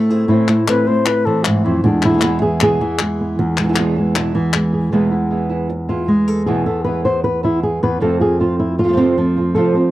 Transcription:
Already playing: nylon-string guitar A2 A3 E4 A4
0.09 nylon-string guitar A3 C4 E4 G#4
0.28 nylon-string guitar A2 E3 A3 C4 E4
0.48 nylon-string guitar A3 C4 E4, clap
0.67 nylon-string guitar E3 A3 C4 E4, flute B4, clap
0.87 nylon-string guitar A3 C4 E4, flute C5
1.06 flute B4, muted nylon-string guitar stroke, clap
1.25 nylon-string guitar E3 A3 C4 E4, flute A4
1.44 nylon-string guitar G#2, flute E4, clap
1.65 nylon-string guitar F2 A3 C4 E4
1.84 nylon-string guitar E2 E3 G#3 D4, muted nylon-string guitar stroke
2.02 nylon-string guitar E3 G#3 B3 E4, clap
2.09 nylon-string guitar B2 E3 G#3 B3 E4
2.13 nylon-string guitar B2 E3 G#3 B3 E4
2.18 nylon-string guitar B2 E3 G#3 B3 E4, clap
2.22 nylon-string guitar E2 B2 E3 G#3 B3 E4
2.42 nylon-string guitar E3 G#3 B3 E4 G#4
2.60 nylon-string guitar E2 B2 E3 G#3 B3 E4 G#4, clap
2.81 nylon-string guitar E3 G#3 B3 E4
2.99 nylon-string guitar G#3, muted nylon-string guitar stroke, clap
3.21 nylon-string guitar B3
3.39 nylon-string guitar E2, muted nylon-string guitar stroke
3.57 nylon-string guitar E3 G#3 B3 E4, clap
3.64 nylon-string guitar B2 E3 G#3 B3 E4
3.68 nylon-string guitar B2 E3 G#3 B3 E4
3.73 nylon-string guitar B2 E3 G#3 B3 E4, clap
3.77 nylon-string guitar E2 B2 E3 G#3 B3 E4
3.96 nylon-string guitar E3 G#3 B3 E4
4.16 nylon-string guitar E2 B2 E3 G#3 B3 E4, clap
4.35 nylon-string guitar E3 G#3 B3 E4
4.53 nylon-string guitar G#3, muted nylon-string guitar stroke, clap
4.73 nylon-string guitar G#4
4.92 nylon-string guitar E2 B2 E3 G#3 B3 E4 B4
5.11 nylon-string guitar E3 G#3 B3 E4
5.30 nylon-string guitar E3 G#3 B3 E4
5.49 nylon-string guitar E3 G#3 B3 E4
5.69 muted nylon-string guitar stroke
5.89 nylon-string guitar E3 G#3 B3 E4 F4
6.07 nylon-string guitar G#3 G#4
6.28 nylon-string guitar A4
6.46 nylon-string guitar E2 B2 E3 G#3 B3 E4 G#4
6.66 nylon-string guitar E3 G#3 B3 E4 A4
6.84 nylon-string guitar E3 G#3 B3 E4 B4
7.05 nylon-string guitar E3 G#3 B3 E4 C5
7.24 nylon-string guitar B4, muted nylon-string guitar stroke
7.43 nylon-string guitar E3 G#3 B3 E4
7.63 nylon-string guitar G#4
7.83 nylon-string guitar E2 B4
8.00 nylon-string guitar F2 C3 F3 A3 C4 F4 A4
8.20 nylon-string guitar F3 A3 C4 F4 G#4
8.40 nylon-string guitar F3 A3 C4 F4
8.60 nylon-string guitar E4
8.78 nylon-string guitar F4, muted nylon-string guitar stroke
8.84 nylon-string guitar C3 F3 A3 C4 F4
8.88 nylon-string guitar C3 F3 A3 C4 F4
8.92 nylon-string guitar C3 F3 A3 C4 F4
8.97 nylon-string guitar F2 C3 F3 A3 C4 F4
9.17 nylon-string guitar F3 A3 C4 F4
9.36 nylon-string guitar F3 A3 C4 F4
9.55 nylon-string guitar F2 C3 F3 A3 C4 F4 A4
9.74 nylon-string guitar F3 A3 C4 F4

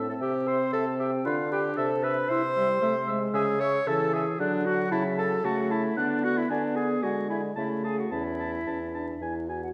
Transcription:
Already playing: bassoon A2, french horn C4
0.08 clarinet A4, flute A5
0.21 bassoon C3, clarinet G4, oboe E5, flute G5
0.46 clarinet C5, oboe E5, flute C6
0.72 bassoon C3, clarinet A4, oboe E5, flute A5
0.98 clarinet G4, oboe E5, flute G5
1.25 bassoon D3, french horn D4, clarinet F4, oboe B4, flute F5
1.52 clarinet G4, oboe B4, flute G5
1.77 bassoon C3, clarinet A4, oboe E5, flute A5
2.03 clarinet B4, oboe E5, flute B5
2.29 bassoon C3, french horn E4, clarinet C5, oboe E5, flute C6
2.56 french horn G3, oboe E5
2.82 bassoon C3, french horn A3, oboe E5
3.07 french horn G#3, oboe E5
3.34 bassoon C#3, clarinet G#4, oboe E5, flute G#5
3.60 clarinet C#5, oboe E5, flute C#6
3.87 bassoon C#3, french horn E3, clarinet A4, oboe E5, flute A5
4.14 clarinet G#4, oboe E5, flute G#5
4.39 bassoon D3, french horn F#3, clarinet D4, flute D5, oboe F#5
4.66 clarinet F#4, flute F#5, oboe F#5
4.91 bassoon C#3, clarinet E4, flute E5, oboe A5
5.17 clarinet A4, oboe A5, flute A5
5.44 bassoon C#3, french horn A3, clarinet F#4, flute F#5, oboe A5
5.71 clarinet E4, flute E5, oboe A5
5.97 bassoon D3, french horn B3, clarinet D4, flute D5, oboe F#5
6.23 clarinet F#4, oboe F#5, flute F#5
6.37 clarinet E4, flute E5
6.50 bassoon D3, french horn B3, clarinet D4, flute D5, oboe G#5
6.76 clarinet G#4, oboe G#5, flute G#5
7.03 bassoon D3, french horn G#3, clarinet F#4, flute F#5, oboe G#5
7.29 clarinet E4, flute E5, oboe G#5
7.56 bassoon C#3, french horn A3, clarinet E4, flute E5, oboe A5
7.84 clarinet G#4, flute G#5, oboe A5
7.98 clarinet F#4, flute F#5
8.11 bassoon E2, french horn C#4, clarinet E4, flute E5, oboe A5
8.39 oboe A5
8.67 bassoon E2, french horn C#4, oboe A5
8.94 french horn D4, oboe A5
9.21 bassoon E2, french horn E4, oboe G#5
9.48 french horn F#4, oboe G#5
9.62 french horn F#4, flute F#5

